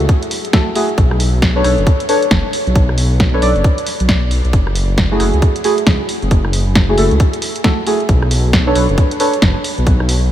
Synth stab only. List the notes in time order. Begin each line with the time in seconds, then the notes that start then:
0.53 A3 E4 F#4 A4
0.76 A3 E4 F#4 G#4
1.56 D4 A4 B4 C#5
1.64 D4 A4 B4 C#5
2.09 D4 A4 B4 C#5
3.34 D4 A4 B4 C#5
3.42 D4 A4 B4 D5
5.11 A3 E4 F#4 G#4
5.20 A3 E4 F#4 G#4
5.64 A3 E4 F#4 G#4
6.89 A3 E4 F#4 G#4
6.98 A3 E4 F#4 A4
7.64 A3 E4 F#4 A4
7.87 A3 E4 F#4 G#4
8.67 D4 A4 B4 C#5
8.76 D4 A4 B4 C#5
9.20 D4 A4 B4 C#5